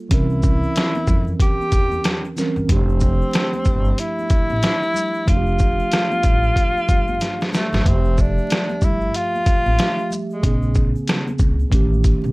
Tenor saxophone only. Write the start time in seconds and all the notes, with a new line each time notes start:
0.13 E4
1.42 G4
2.71 C4
3.99 E4
5.29 F4
7.56 A3
7.88 C4
8.21 D4
8.84 E4
9.17 F4
10.32 G#3